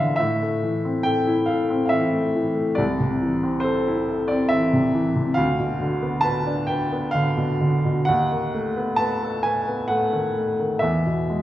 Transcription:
Already playing: G#2 E3 B3 E4 B4 C5 D5 E5 F5
0.00 D3
0.16 A2 E5
0.42 A3
0.63 E3
0.85 C4
1.03 A4 G5
1.27 E4
1.46 A4 F5
1.70 C4
1.86 E5 F5
1.93 E3
2.13 A3
2.36 E3
2.55 A3
2.75 C2 D5
3.00 C3
3.22 E3
3.43 C4
3.60 A4 C5
3.87 E4
4.09 A4
4.28 C4 D5
4.49 E3 E5
4.73 C3
4.94 E3
5.15 C3
5.34 D2 F5
5.59 B2
5.80 D3
6.02 B3
6.21 B4 A5
6.46 D4
6.67 B4 G5
6.92 B3
7.11 D3 F5
7.37 B2
7.61 D3
7.84 B2
8.05 D#2 F#5
8.31 D#3
8.54 A3
8.77 B3
8.96 B4 A5
9.23 A4
9.43 B4 G#5
9.68 B3
9.88 A3 F#5
10.13 D#3
10.37 A3
10.59 D#3
10.79 E2 E5
11.06 B2
11.30 G#3

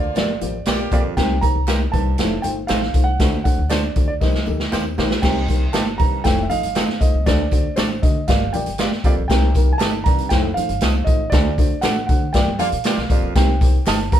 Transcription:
Already playing: D2 D3 A#3 F4 D5
0.15 G1 A#3 F4 G4 D5, snare, closed hi-hat, tambourine, low conga
0.41 A1 A#3 F4 G4 C5, closed hi-hat, tambourine, muted conga, low conga
0.65 A#1 D3 A#3 F4 G4 D5, snare, clap, closed hi-hat, tambourine, high conga
0.79 high conga
0.91 A#1 F2 A#3 F4 G4 D5, kick, closed hi-hat, tambourine
1.16 C2 C3 A#3 D#4 G4 C5 G5, kick, snare, closed hi-hat, muted conga
1.41 A#3 D#4 G4 C5 A#5, kick, closed hi-hat, tambourine, muted conga
1.55 C2
1.67 A#3 D#4 G4 A#4 C5, snare, clap, closed hi-hat, tambourine, high conga
1.92 C2 G2 A#3 D#4 G4 C5 A5, kick, closed hi-hat
2.18 A2 A3 D#4 F4 C5, snare, closed hi-hat, tambourine, low conga
2.42 G1 A3 D#4 F4 C5 G5, closed hi-hat, tambourine, muted conga
2.67 A1 A3 C4 D#4 F4 A4 C5 F5, snare, clap, closed hi-hat, tambourine, high conga
2.82 snare, high conga
2.94 C2 A3 D#4 F4 C5, kick, closed hi-hat, tambourine
3.04 F#5
3.20 D2 A3 D4 F#4 C5, kick, snare, closed hi-hat, muted conga
3.44 A3 D4 F#4 C5 F#5, kick, closed hi-hat, tambourine, muted conga
3.58 D2
3.70 A3 D4 F#4 C5 D5, snare, clap, closed hi-hat, tambourine, high conga
3.96 D2 A3 D4 F#4 C5, kick, closed hi-hat, tambourine
4.08 D5
4.21 C2 A#3 D#4 G4 C5 D#5, kick, snare, tambourine, low conga
4.35 snare
4.46 D2 A#3 D#4 G4 A4, tambourine, muted conga, low conga
4.60 snare
4.72 D#2 A#3 D#4 G4 C5, snare, clap, tambourine, high conga
4.84 high conga
4.98 A#1 D#2 A#3 D#4 G4 C5, snare, tambourine
5.11 snare
5.22 C2 C3 A#3 D#4 G4 C5 G5, kick, snare, crash, tambourine, muted conga
5.48 A#3 D#4 G4 C5, kick, closed hi-hat, tambourine, muted conga
5.73 G1 A#3 D#4 G4 C5 A5, snare, clap, closed hi-hat, tambourine, high conga
5.98 G2 C3 A#3 D#4 G4 C5 A#5, kick, closed hi-hat
6.24 F1 A2 A3 D#4 F4 C5 G5, kick, snare, closed hi-hat, tambourine, low conga
6.42 E5
6.50 A1 A3 D#4 F4 D#5 F5, closed hi-hat, tambourine, muted conga, low conga
6.63 G1, closed hi-hat
6.75 A3 C4 D#4 F4 A4 C5, snare, clap, closed hi-hat, tambourine, high conga
6.88 snare, high conga
7.00 C2 A3 D#4 F4 C5 D#5, kick, closed hi-hat, tambourine
7.14 C2
7.26 D2 A3 D4 F#4 C5 D5, kick, snare, closed hi-hat, muted conga
7.51 A3 D4 F#4 C5, kick, closed hi-hat, tambourine
7.76 A1 A3 C4 D4 F#4 A4 C5 D5, snare, clap, closed hi-hat, tambourine, high conga
8.02 D3 A3 D4 F#4 C5 D#5, kick, closed hi-hat, tambourine
8.28 G1 A#3 F4 G4 D5 F5, kick, snare, closed hi-hat, tambourine, low conga
8.53 A#1 A#3 F4 G4 D5 G5, closed hi-hat, tambourine, muted conga, low conga
8.66 G1, closed hi-hat
8.78 A#3 F4 G4 D5, snare, clap, closed hi-hat, tambourine, high conga
8.92 snare, high conga
9.04 C2 F2 A#3 F4 G4 D5, kick, closed hi-hat, tambourine
9.17 A#1
9.28 C2 C3 A#3 D#4 G4 C5 G5, kick, snare, closed hi-hat, tambourine, muted conga
9.55 A#3 D#4 G4 A#4, kick, closed hi-hat, tambourine, muted conga
9.73 G#5
9.78 G1 A#3 C4 D#4 G4 A4 A#4 D#5 A5, snare, clap, closed hi-hat, tambourine
9.82 high conga
10.04 G2 C3 A#3 D#4 G4 D5 A#5, kick, closed hi-hat
10.18 closed hi-hat
10.29 F1 A2 A3 D#4 F4 C5 G5, kick, snare, closed hi-hat, tambourine, low conga
10.54 A1 A3 D#4 F4 C5 F5, closed hi-hat, tambourine, muted conga, low conga
10.69 G1, closed hi-hat
10.81 C2 A3 C4 D#4 F4 A4 C5 D#5, snare, clap, closed hi-hat, tambourine, high conga
10.95 high conga
11.04 A1 A3 D#4 F4 C5 D#5, kick, closed hi-hat, tambourine
11.30 D2 A3 D4 F#4 C5 D5, kick, snare, closed hi-hat, tambourine, muted conga
11.58 A3 D4 F#4 C5, kick, closed hi-hat, tambourine, muted conga
11.81 A1 A3 C4 D4 F#4 A4 D5 F#5, snare, clap, closed hi-hat, tambourine, high conga
12.07 D3 A3 D4 F#4 C5 F#5, kick, closed hi-hat, tambourine
12.33 G1 A#3 F4 G4 D5 G5, kick, snare, closed hi-hat, tambourine, low conga
12.47 G2
12.59 F2 D3 A#3 F4 G4 D5 F5, closed hi-hat, tambourine, muted conga, low conga
12.72 A#2, closed hi-hat
12.84 D3 A#3 F4 G4 D5, snare, clap, closed hi-hat, tambourine, high conga
12.97 A#1, snare, high conga
13.10 A1 F2 A#3 F4 G4 D5, kick, closed hi-hat, tambourine
13.23 A#1
13.35 C2 C3 A#3 D#4 G4 C5 G5, kick, snare, closed hi-hat, tambourine, muted conga
13.61 A#3 D#4 G4 C5, kick, closed hi-hat, tambourine, muted conga
13.86 G1 A#3 D#4 G4 A#4 C5 D#5 A5, snare, clap, closed hi-hat, tambourine, high conga
14.12 G2 C3 A#3 D#4 G4 C5 A#5, kick, closed hi-hat

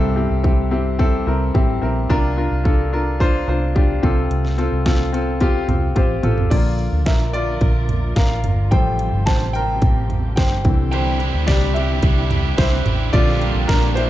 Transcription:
Already playing: C2 G2 C4 E4 G4 A4 A#4
0.16 C4 E4 G4
0.30 C2
0.43 C4 E4 G4, kick
0.71 C4 E4 G4
0.99 C4 E4 A4, kick
1.27 C2 C4 E4 A#4
1.54 A1 C4 E4 G4, kick
1.82 A#1 C4 E4 A#4
2.10 C2 C3 D4 F4 A#4, kick
2.37 D4 F4 A#4
2.51 C2
2.64 D4 F4 A4, kick
2.92 D4 F4 A#4
3.20 D4 F4 C5, kick
3.48 C2 D4 F4 C5
3.75 D4 F4 G4, kick
4.03 C2 C3 C4 F4 A4, kick
4.31 C2, closed hi-hat
4.45 snare
4.58 C4 F4 A4, closed hi-hat
4.72 C2
4.85 C4 F4 A4, kick, snare, closed hi-hat
5.13 C4 F4 A4, closed hi-hat
5.40 C4 F4 G4, kick, closed hi-hat
5.68 C2 C4 F4 G4, closed hi-hat, floor tom
5.95 A1 C4 F4 G4 C5, kick, closed hi-hat, high tom
6.23 A1 C4 F4 A4, closed hi-hat, mid tom
6.38 floor tom
6.50 A#1 D3 F3 A#3 F4 A#4 D5, kick, closed hi-hat, crash
6.79 closed hi-hat
6.92 D2
7.06 A#1 A#4 E5, kick, snare, closed hi-hat
7.33 F4 D5, closed hi-hat
7.61 A#1, kick, closed hi-hat
7.89 closed hi-hat, floor tom
8.16 A1 A#4 F5, kick, snare, closed hi-hat
8.44 G1, closed hi-hat, floor tom
8.71 A1 C3 F3 G3 A3 C4 G4 C5 G5, kick, closed hi-hat
8.99 closed hi-hat
9.13 G1
9.26 A1 C5 A5, kick, snare, closed hi-hat
9.53 A#4 G5, closed hi-hat
9.82 A1, kick, closed hi-hat
10.10 closed hi-hat, floor tom
10.36 G1 C5 G5, kick, snare, closed hi-hat
10.65 C2 D3 E3 C4 E4, kick, closed hi-hat, floor tom
10.91 C3 G3 D4 E4 G4 C5 G5, closed hi-hat
11.20 D4 E4 G4, closed hi-hat
11.34 D2
11.47 C2 C3 G3 D4 E4 G4 D5, kick, snare, closed hi-hat
11.74 D4 E4 G4 E5, closed hi-hat
12.02 C2 G3 D4 E4 G4, kick, closed hi-hat
12.30 D4 E4 G4, closed hi-hat, floor tom
12.58 C2 C3 G3 D4 E4 G4 C5, kick, snare, closed hi-hat
12.85 A1 D4 E4 G4, closed hi-hat, floor tom
13.13 A#1 A#2 D3 F3 G3 A#3 C4 D4 F4 G4 D5, kick, closed hi-hat
13.28 snare
13.40 F3 A#3 D4 G4, closed hi-hat
13.55 A#1
13.68 A#1 A#2 D3 F3 A#3 D4 G4 A#4, kick, snare, closed hi-hat
13.95 F3 A#3 D4 E4 G4 C5, closed hi-hat

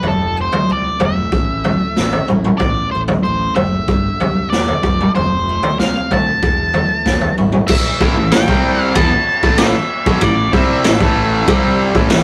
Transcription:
0.03 F1 F3, floor tom
0.07 A4
0.37 A3
0.41 C5
0.52 floor tom
0.69 C2 C4 D5
1.00 F1 A3, floor tom, mid tom
1.05 E5
1.32 A1 A2, kick
1.64 A3, floor tom
1.96 A1 C4, snare
2.12 floor tom
2.28 A1 E4, mid tom
2.44 mid tom
2.58 A1 A2 D5, kick, floor tom
2.91 A1 A3 C5
3.08 floor tom
3.23 A1 C4 C5
3.55 F#1 A3 E5, floor tom, mid tom
3.88 G1 G2, kick
4.20 C2 G3, floor tom
4.50 E1 D5, snare
4.54 B3
4.68 floor tom
4.83 F1 F3, kick, mid tom
5.01 mid tom
5.15 F1 F3 C5, floor tom
5.49 A3
5.63 floor tom
5.79 C2 C4 F5, snare
6.11 D2 A3 A5, kick, floor tom, mid tom
6.42 E1 E3, kick
6.74 A3, floor tom
7.06 E1 B3, kick, snare
7.21 floor tom
7.38 G#1 E4, mid tom
7.52 mid tom
7.67 E5, kick, crash
8.01 A1 A2 E3, kick
8.16 A1 A2 E3
8.32 A1 A2 E3 G5, snare, ride bell
8.47 C2 C3 G3 C4, kick
8.82 F5
8.95 E2 E3 B3 A5, kick, ride bell
9.11 muted distorted electric guitar stroke, muted overdriven electric guitar stroke, muted fingered electric bass stroke
9.43 A1 A2 E3 A3, kick
9.58 E5, snare, ride bell
10.06 B1 B2 F#3, kick
10.21 A1 A2 E3 D5, kick, ride bell
10.53 C2 C3 G3 C4 E5, kick
10.84 A1 A2 E3, snare, ride bell
11.00 A1 A2 E3 A3, kick
11.48 C2 C3 G3 C4, kick, ride bell
11.95 A1 A2 E3, kick
12.10 A1 A2 E3, snare, ride bell

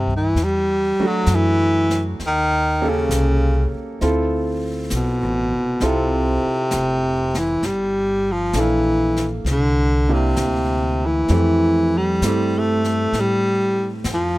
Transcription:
Already playing: G2 C3
0.08 kick
0.16 E3
0.35 E2, brush sweep, snare
0.44 G3
0.99 F#3 A3 D4 F#4, muted upright bass stroke
1.07 F#3
1.26 F#2, snare, hi-hat pedal
1.35 E3
1.90 snare
2.20 D#2, brush sweep, snare
2.27 D#3
2.82 A#3 C#4 G4 A4
2.89 C#3
3.09 C2, snare, hi-hat pedal
3.74 muted upright bass stroke
4.01 D2 C4 E4 F4 A4, brush sweep, snare
4.90 B1, snare, hi-hat pedal
4.95 B2
5.22 A1
5.52 F1
5.80 C2 C4 E4 F4 A4, brush sweep, snare
5.84 C3
6.46 muted upright bass stroke
6.71 F1, snare, hi-hat pedal
7.34 E3, snare
7.63 G1 G3, brush sweep, snare
8.32 F3
8.53 A#1 A#3 D4 A4 F5, snare, hi-hat pedal
8.60 E3
9.16 snare
9.45 C2, brush sweep, snare
9.51 D3
10.09 A#3 D4 E4 G4
10.13 C3
10.36 D2, snare, hi-hat pedal
11.06 E3
11.28 F2 A3 C4 E4 G4, brush sweep, snare
11.97 G3
12.22 G2 A3 C4 E4 G4, snare, hi-hat pedal
12.58 A3
12.84 snare
13.13 A2, brush sweep, snare
13.20 G3
14.04 F2, snare, hi-hat pedal
14.14 F3

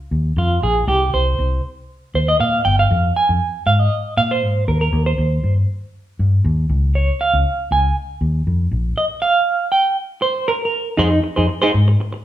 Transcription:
0.11 D#2
0.37 F2 F4
0.62 A#1 G#4
0.87 C2 G4
1.14 C2 C5
1.39 C2
2.14 D#2 C5
2.28 D#5
2.40 A#2 F5
2.65 G1 G5
2.79 F5
2.91 F2
3.16 G#5
3.29 F2
3.66 G#2 F5
3.79 D#5
4.17 A#2 F5
4.31 C5
4.42 G#2
4.68 D#2 A#4
4.81 A#4
4.93 D#2
5.06 C5
5.18 D#2
5.43 G2
6.19 G2
6.45 D#2
6.70 C#2
6.95 C#5
7.21 F5
7.33 C#2
7.71 C#2 G#5
8.21 D#2
8.47 F2
8.71 A#1
8.98 D#5
9.22 F5
9.72 G5
10.22 C5
10.48 A#4
10.65 A#4
10.97 F2 D#4 G#4 C5
11.11 muted clean electric guitar stroke
11.22 muted clean electric guitar stroke
11.36 F2 D#4 G#4 C5
11.48 muted clean electric guitar stroke
11.62 D#4 G#4 C5
11.74 G#2, muted clean electric guitar stroke
11.88 muted clean electric guitar stroke
12.00 muted clean electric guitar stroke
12.13 muted clean electric guitar stroke

